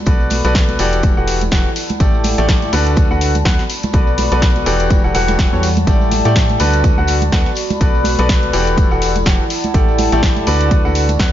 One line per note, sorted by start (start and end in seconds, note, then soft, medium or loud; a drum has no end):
0.00 0.22 F#4 medium
0.00 1.28 A4 medium
0.00 11.32 D5 medium
0.00 1.28 B5 medium
0.06 0.42 B1 loud
0.06 0.41 B3 medium
0.06 0.41 F#4 medium
0.06 0.41 A4 medium
0.06 0.41 B4 medium
0.06 0.41 D5 medium
0.06 kick loud
0.06 closed hi-hat medium
0.06 tambourine medium
0.20 tambourine soft
0.30 open hi-hat loud
0.30 tambourine loud
0.30 high conga medium
0.44 0.77 B1 medium
0.44 0.77 B3 medium
0.44 0.77 F#4 medium
0.44 0.77 A4 medium
0.44 0.77 B4 medium
0.44 0.77 D5 loud
0.44 closed hi-hat soft
0.44 tambourine soft
0.55 kick loud
0.55 snare loud
0.55 closed hi-hat medium
0.68 closed hi-hat soft
0.68 tambourine soft
0.68 high conga medium
0.79 1.14 E1 medium
0.79 1.14 E3 medium
0.79 2.97 E4 medium
0.79 1.14 F#4 medium
0.79 1.14 G4 medium
0.79 1.14 A4 medium
0.79 1.14 D5 loud
0.79 open hi-hat medium
0.79 tambourine loud
0.93 closed hi-hat medium
0.93 tambourine soft
1.03 kick loud
1.03 closed hi-hat medium
1.03 tambourine medium
1.03 high conga loud
1.17 1.50 E1 medium
1.17 1.41 E3 medium
1.17 1.41 F#4 medium
1.17 1.41 G4 medium
1.17 1.41 A4 medium
1.17 1.41 F#5 medium
1.17 tambourine soft
1.28 open hi-hat loud
1.28 tambourine loud
1.34 2.40 F#5 medium
1.34 3.27 A5 medium
1.41 closed hi-hat medium
1.41 tambourine soft
1.41 high conga medium
1.51 1.66 E1 loud
1.51 1.68 E3 medium
1.51 1.68 F#4 medium
1.51 1.68 G4 medium
1.51 1.68 A4 medium
1.51 1.68 F#5 medium
1.51 kick loud
1.51 snare loud
1.51 closed hi-hat medium
1.51 tambourine medium
1.65 tambourine soft
1.76 open hi-hat medium
1.76 tambourine loud
1.89 closed hi-hat medium
1.89 tambourine soft
1.89 high conga loud
2.00 2.35 A1 loud
2.00 2.35 A3 medium
2.00 2.35 E4 medium
2.00 2.35 G4 medium
2.00 2.35 A4 medium
2.00 2.35 D5 medium
2.00 kick loud
2.00 closed hi-hat medium
2.00 tambourine medium
2.14 tambourine soft
2.24 open hi-hat loud
2.24 tambourine medium
2.24 high conga medium
2.38 2.71 A1 loud
2.38 2.70 A3 medium
2.38 2.70 E4 medium
2.38 2.70 G4 medium
2.38 2.70 A4 medium
2.38 2.70 D5 loud
2.38 closed hi-hat soft
2.38 tambourine soft
2.48 kick loud
2.48 snare loud
2.48 closed hi-hat medium
2.48 tambourine medium
2.62 closed hi-hat soft
2.62 tambourine soft
2.62 high conga medium
2.73 3.08 D2 loud
2.73 3.07 D3 loud
2.73 3.07 F#4 medium
2.73 3.07 A4 medium
2.73 3.07 B4 medium
2.73 3.07 D5 loud
2.73 open hi-hat medium
2.73 tambourine loud
2.87 closed hi-hat soft
2.87 tambourine soft
2.96 4.09 F#4 medium
2.96 kick loud
2.96 closed hi-hat medium
2.96 tambourine medium
2.96 high conga loud
3.11 3.43 D2 medium
3.11 3.34 D3 medium
3.11 3.34 F#4 medium
3.11 3.34 A4 medium
3.11 3.34 B4 medium
3.11 3.34 F#5 medium
3.11 tambourine soft
3.21 open hi-hat loud
3.21 tambourine medium
3.31 5.15 B5 medium
3.35 closed hi-hat medium
3.35 tambourine soft
3.35 high conga medium
3.45 3.59 D2 loud
3.45 3.61 B3 medium
3.45 3.61 F#4 medium
3.45 3.61 A4 medium
3.45 3.61 B4 medium
3.45 3.61 F#5 medium
3.45 kick loud
3.45 snare loud
3.45 closed hi-hat medium
3.45 tambourine medium
3.59 snare soft
3.59 tambourine soft
3.69 5.15 A4 medium
3.69 open hi-hat loud
3.69 tambourine medium
3.83 closed hi-hat soft
3.83 tambourine soft
3.83 high conga loud
3.93 4.29 B1 loud
3.93 4.28 B3 medium
3.93 4.28 F#4 medium
3.93 4.28 A4 medium
3.93 4.28 B4 medium
3.93 4.28 D5 medium
3.93 kick loud
3.93 closed hi-hat medium
3.93 tambourine medium
4.07 tambourine soft
4.18 open hi-hat loud
4.18 tambourine loud
4.18 high conga medium
4.32 4.64 B1 loud
4.32 4.64 B3 medium
4.32 4.64 F#4 medium
4.32 4.64 A4 medium
4.32 4.64 B4 medium
4.32 4.64 D5 loud
4.32 closed hi-hat soft
4.32 tambourine soft
4.42 kick loud
4.42 snare loud
4.42 closed hi-hat medium
4.42 tambourine soft
4.56 closed hi-hat soft
4.56 tambourine soft
4.56 high conga medium
4.66 5.01 E1 medium
4.66 5.01 E3 loud
4.66 6.84 G3 medium
4.66 5.01 F#4 medium
4.66 5.01 G4 medium
4.66 5.01 A4 medium
4.66 5.01 D5 loud
4.66 open hi-hat medium
4.66 tambourine loud
4.80 closed hi-hat medium
4.80 tambourine soft
4.90 kick loud
4.90 closed hi-hat medium
4.90 tambourine medium
4.90 high conga medium
5.04 5.13 E1 medium
5.04 5.13 E3 medium
5.04 5.13 F#4 medium
5.04 5.13 G4 medium
5.04 5.13 A4 medium
5.04 5.13 F#5 medium
5.04 tambourine soft
5.15 5.50 E1 medium
5.15 5.49 E3 medium
5.15 5.49 F#4 medium
5.15 5.49 G4 medium
5.15 5.49 A4 medium
5.15 5.49 F#5 loud
5.15 open hi-hat loud
5.15 tambourine medium
5.22 6.27 F#5 medium
5.22 7.14 A5 medium
5.28 snare soft
5.28 closed hi-hat medium
5.28 tambourine soft
5.28 high conga medium
5.39 kick loud
5.39 snare loud
5.39 closed hi-hat medium
5.39 tambourine medium
5.53 5.85 E2 medium
5.53 5.66 E3 medium
5.53 5.66 F#4 medium
5.53 5.66 G4 medium
5.53 5.66 A4 medium
5.53 5.66 C#5 medium
5.53 tambourine soft
5.63 open hi-hat medium
5.63 tambourine loud
5.77 closed hi-hat soft
5.77 tambourine soft
5.77 high conga medium
5.87 6.22 A1 loud
5.87 6.22 A3 medium
5.87 6.22 E4 medium
5.87 6.22 G4 medium
5.87 6.22 A4 medium
5.87 6.22 D5 medium
5.87 kick loud
5.87 closed hi-hat medium
5.87 tambourine medium
6.01 tambourine soft
6.12 open hi-hat loud
6.12 tambourine medium
6.12 high conga medium
6.25 6.58 A2 medium
6.25 6.57 A3 medium
6.25 6.57 E4 medium
6.25 6.57 G4 medium
6.25 6.57 A4 medium
6.25 6.57 D5 loud
6.25 closed hi-hat soft
6.25 tambourine soft
6.36 kick loud
6.36 snare loud
6.36 closed hi-hat medium
6.36 tambourine medium
6.49 closed hi-hat soft
6.49 tambourine soft
6.49 high conga medium
6.59 6.95 D2 medium
6.59 6.95 D3 loud
6.59 6.95 F#4 medium
6.59 6.95 A4 medium
6.59 6.95 B4 medium
6.59 6.95 D5 loud
6.59 open hi-hat medium
6.59 tambourine loud
6.74 closed hi-hat soft
6.74 tambourine soft
6.84 7.97 F#4 medium
6.84 kick loud
6.84 closed hi-hat medium
6.84 tambourine medium
6.84 high conga medium
6.98 7.30 D2 medium
6.98 7.21 D3 medium
6.98 7.21 F#4 medium
6.98 7.21 A4 medium
6.98 7.21 B4 medium
6.98 7.21 F#5 medium
6.98 tambourine soft
7.07 open hi-hat loud
7.07 tambourine loud
7.18 9.02 B5 medium
7.18 high conga medium
7.22 closed hi-hat soft
7.22 tambourine soft
7.32 7.46 D2 loud
7.32 7.48 B3 medium
7.32 7.48 F#4 medium
7.32 7.48 A4 medium
7.32 7.48 B4 medium
7.32 7.48 F#5 medium
7.32 kick loud
7.32 snare loud
7.32 closed hi-hat medium
7.32 tambourine soft
7.46 snare soft
7.46 tambourine soft
7.55 9.02 A4 medium
7.55 open hi-hat medium
7.55 tambourine medium
7.70 closed hi-hat soft
7.70 tambourine soft
7.70 high conga medium
7.81 8.16 B1 medium
7.81 8.16 B3 medium
7.81 8.16 F#4 medium
7.81 8.16 A4 medium
7.81 8.16 B4 medium
7.81 8.16 D5 medium
7.81 kick loud
7.81 closed hi-hat medium
7.81 tambourine soft
7.95 tambourine soft
8.04 open hi-hat loud
8.04 tambourine loud
8.04 high conga medium
8.18 8.51 B1 loud
8.18 8.51 B3 medium
8.18 8.51 F#4 medium
8.18 8.51 A4 medium
8.18 8.51 B4 medium
8.18 8.51 D5 loud
8.18 closed hi-hat medium
8.18 tambourine soft
8.29 kick loud
8.29 snare loud
8.29 closed hi-hat medium
8.29 tambourine medium
8.42 closed hi-hat soft
8.42 tambourine soft
8.42 high conga medium
8.53 8.89 E1 medium
8.53 8.88 E3 loud
8.53 10.71 E4 medium
8.53 8.88 F#4 medium
8.53 8.88 G4 medium
8.53 8.88 A4 medium
8.53 8.88 D5 loud
8.53 open hi-hat medium
8.53 tambourine loud
8.67 closed hi-hat soft
8.67 tambourine soft
8.77 kick loud
8.77 closed hi-hat medium
8.77 tambourine soft
8.77 high conga medium
8.91 9.24 E1 medium
8.91 9.15 E3 medium
8.91 9.15 F#4 medium
8.91 9.15 G4 medium
8.91 9.15 A4 medium
8.91 9.15 F#5 medium
8.91 tambourine soft
9.02 open hi-hat loud
9.02 tambourine medium
9.09 10.14 F#5 medium
9.09 11.01 A5 medium
9.15 closed hi-hat medium
9.15 tambourine soft
9.15 high conga medium
9.25 9.40 E1 loud
9.25 9.42 E3 medium
9.25 9.42 F#4 medium
9.25 9.42 G4 medium
9.25 9.42 A4 medium
9.25 9.42 F#5 medium
9.25 kick loud
9.25 snare loud
9.25 closed hi-hat medium
9.25 tambourine medium
9.40 tambourine soft
9.50 open hi-hat medium
9.50 tambourine medium
9.64 closed hi-hat medium
9.64 tambourine soft
9.64 high conga medium
9.74 10.10 A1 loud
9.74 10.09 A3 medium
9.74 10.09 E4 medium
9.74 10.09 G4 medium
9.74 10.09 A4 medium
9.74 10.09 D5 medium
9.74 kick loud
9.74 closed hi-hat medium
9.74 tambourine soft
9.88 tambourine soft
9.98 open hi-hat loud
9.98 tambourine medium
9.98 high conga medium
10.12 10.45 A1 loud
10.12 10.44 A3 medium
10.12 10.44 E4 medium
10.12 10.44 G4 medium
10.12 10.44 A4 medium
10.12 10.44 D5 loud
10.12 closed hi-hat medium
10.12 tambourine soft
10.23 kick loud
10.23 snare loud
10.23 closed hi-hat medium
10.36 closed hi-hat soft
10.36 tambourine soft
10.36 high conga medium
10.47 10.82 D2 medium
10.47 10.82 D3 loud
10.47 10.82 F#4 medium
10.47 10.82 A4 medium
10.47 10.82 B4 medium
10.47 10.82 D5 loud
10.47 open hi-hat medium
10.47 tambourine medium
10.61 closed hi-hat medium
10.61 tambourine soft
10.71 11.32 F#4 medium
10.71 kick loud
10.71 closed hi-hat medium
10.71 tambourine soft
10.71 high conga medium
10.85 11.17 D2 loud
10.85 11.08 D3 medium
10.85 11.08 F#4 medium
10.85 11.08 A4 medium
10.85 11.08 B4 medium
10.85 11.08 F#5 medium
10.85 tambourine soft
10.95 open hi-hat medium
10.95 tambourine medium
11.05 11.32 B5 medium
11.05 closed hi-hat medium
11.05 tambourine soft
11.05 high conga medium
11.19 11.32 D2 loud
11.19 11.32 B3 medium
11.19 11.32 F#4 medium
11.19 11.32 A4 medium
11.19 11.32 B4 medium
11.19 11.32 F#5 medium
11.19 kick loud
11.19 snare loud
11.19 closed hi-hat medium